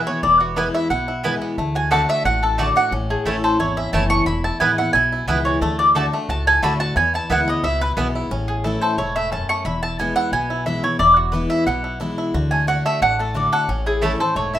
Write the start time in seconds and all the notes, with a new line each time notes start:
Already playing: B2 E3 E4
0.07 B3 E4 C#5
0.23 E1 E2 E4 D5
0.40 B3 F#4
0.56 E3 G#3 B3 E4 B4 G#5
0.74 E4 E5
0.90 B1 B2 E4 F#5
1.08 E4
1.24 E3 G#3 B3 E4 B4 G#5
1.42 B3
1.58 D2 D3 A3
1.75 F#4 G#5
1.91 D3 A3 D4 F#4 A4 D5 F#5 A5
2.09 A3 E5
2.25 A1 A2 F#4 F#5
2.43 A4
2.58 D3 A3 D4 F#4 D5 A5
2.76 D4 F#4 F#5
2.91 A1 A2 C#4
3.10 A3 G#4
3.25 A1 E3 A3 C#4 E4 A4 C#5 A5
3.44 A4 C5
3.59 G#1 E2 E4 C#5
3.77 C#4 E5
3.93 F#1 E3 A3 C#4 E4 C#5 A5
4.10 A3 C#6
4.26 E1 E2 E4 B5
4.44 E4 A5
4.60 A1 E3 G#3 B3 E4 B4 G#5
4.78 B3 E4 F#5
4.93 B1 B2 E4 G#5
5.12 E4
5.28 C#2 E3 G#3 B3 E4 B4 E5 G#5
5.45 E3 C#5
5.61 D2 D3 A3 A4
5.79 F#4 D5
5.95 D3 A3 D4 F#4 A4 D5 A5
6.13 A3 D4 F#4
6.29 C#2 A2 F#4 A5
6.47 A4 G#5
6.62 D2 D3 A3 D4 F#4 D5 A5 B5
6.80 F#4 A5
6.96 E2 B3 G#5
7.14 E4 A5
7.30 D2 E3 G#3 B3 E4 B4 F#5 G#5
7.47 B3 E4 D#5
7.63 C#2 B2 E4 E5
7.81 E4 B4
7.97 B1 E3 G#3 B3 E4 B4 G#5
8.15 E4
8.31 A1 A2 C#4
8.48 G#4
8.64 E3 A3 C#4 E4 A4
8.81 A4 C5
8.98 E1 G#2 E4 C#5
9.16 A3 E5
9.32 F#2 C#4 A5
9.49 A3 C#6
9.65 E1 E2 E4 B5
9.83 E4 A5
9.99 E3 G#3 B3 E4 G#5
10.16 E4 F#5
10.32 B1 B2 B3 G#5
10.50 E4
10.66 E3 G#3 B3 E4 E5
10.83 B3 E4 C#5
10.99 E1 E2 E4 D5
11.16 F#4
11.32 E3 G#3 B3 E4 B4
11.50 E4 E5
11.67 B1 B2 B3 F#5
11.84 E4
12.00 E3 G#3 B3 E4
12.18 E4
12.34 D2 D3 F#4
12.51 A3 G#5
12.67 D3 A3 D4 F#4 F#5
12.86 A3 E5
13.01 A1 A2 D4 F#5
13.19 A3 A4
13.34 D3 A3 D4 F#4 D5
13.52 A4 F#5
13.68 A1 A2 C#4
13.86 E4 G#4
14.01 E3 A3 C#4 E4 A4 C#5 A5
14.20 C#4 E4 A4 C5
14.36 E1 G#2 A3 C#5
14.54 E4 E5